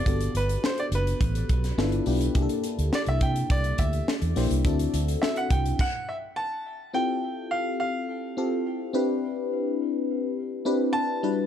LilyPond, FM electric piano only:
\new Staff \with { instrumentName = "FM electric piano" } { \time 4/4 \key c \lydian \tempo 4 = 105 <b d' fis' g' a'>2 r4 <b d' e' f' a'>8 <b d' e' f' g'>8 | <bes d' e' g' aes' a'>2 r4. <bes d' e' g' c''>8 | <c' d' e' fis' a'>2 r2 | <c' e' f' g' a'>2 r8 <c' f' g' a'>4 <c' d' e' g' b'>8~ |
<c' d' e' g' b'>4. r4 <c' d' e' g' b'>4 <g d' e' fis' b'>8 | }